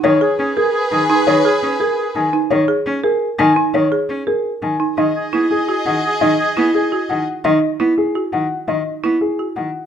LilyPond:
<<
  \new Staff \with { instrumentName = "Grand piano" } { \time 7/8 \key e \lydian \tempo 4 = 170 cis''8 r4 gis'8 r8 gis''8 r8 | cis''8 r4 gis'8 r8 gis''8 r8 | cis''8 r4 gis'8 r8 gis''8 r8 | cis''8 r4 gis'8 r8 gis''8 r8 |
dis''8 r4 gis'8 r8 fis''8 r8 | dis''8 r4 gis'8 r8 fis''8 r8 | dis''8 r4 gis'8 r8 fis''8 r8 | dis''8 r4 gis'8 r8 fis''8 r8 | }
  \new Staff \with { instrumentName = "Violin section" } { \time 7/8 \key e \lydian <gis' b'>2.~ <gis' b'>8~ | <gis' b'>2. r8 | r2. r8 | r2. r8 |
<gis' dis''>2.~ <gis' dis''>8~ | <gis' dis''>2. r8 | r2. r8 | r2. r8 | }
  \new Staff \with { instrumentName = "Oboe" } { \time 7/8 \key e \lydian gis'8 gis'8 gis'8 gis'8 gis'8 gis'8 gis'8 | gis'8 gis'8 gis'8 gis'8 gis'8 gis'8 r8 | r2. r8 | r2. r8 |
gis'8 gis'8 gis'8 gis'8 gis'8 gis'8 gis'8 | gis'8 gis'8 gis'8 gis'8 gis'8 gis'8 r8 | r2. r8 | r2. r8 | }
  \new Staff \with { instrumentName = "Marimba" } { \time 7/8 \key e \lydian r8 gis'8 r8 ais'8 r4 dis'8 | r8 gis'8 r8 ais'8 r4 dis'8 | r8 gis'8 r8 ais'8 r4 dis'8 | r8 gis'8 r8 ais'8 r4 dis'8 |
dis'8 r8 e'8 r8 fis'8 r4 | dis'8 r8 e'8 r8 fis'8 r4 | dis'8 r8 e'8 r8 fis'8 r4 | dis'8 r8 e'8 r8 fis'8 r4 | }
  \new Staff \with { instrumentName = "Cello" } { \clef bass \time 7/8 \key e \lydian dis8 r8 cis'8 r4 dis8 r8 | dis8 r8 cis'8 r4 dis8 r8 | dis8 r8 cis'8 r4 dis8 r8 | dis8 r8 cis'8 r4 dis8 r8 |
dis8 r8 b8 r4 dis8 r8 | dis8 r8 b8 r4 dis8 r8 | dis8 r8 b8 r4 dis8 r8 | dis8 r8 b8 r4 dis8 r8 | }
>>